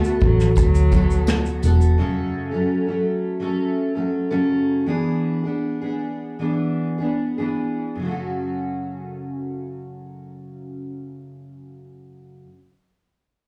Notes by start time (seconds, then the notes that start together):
Already playing: A3
0.04 B3 F#4 A4, shaker
0.20 A1 F#3, kick, tambourine
0.40 snare, shaker
0.56 D2 F#3, kick, tambourine, shaker
0.75 shaker
0.92 F#3 B3 F#4 A4, kick, tambourine, shaker
1.11 shaker
1.27 F#3 B3 F#4 A4, snare, tambourine, shaker
1.45 shaker
1.62 E1 F#3 B3 F#4 A4, tambourine, shaker
1.81 shaker
1.98 F#2 C#3 F#3 A3 C#4 A4
2.51 F#3 A3 C#4 A4
2.87 F#3 A3 C#4 A4
3.40 F#3 A3 C#4 A4
3.95 F#3 A3 C#4 A4
4.31 F#2 C#3 F#3 A3 C#4 A4
4.86 E3 B3 D4 G#4
5.44 B3 D4 G#4
5.81 B3 D4 G#4
6.39 E3 B3 D4 G#4
6.98 B3 D4 G#4
7.38 E3 B3 D4 G#4
7.95 F#2
8.00 C#3 F#3
8.05 A3 C#4
8.11 F#4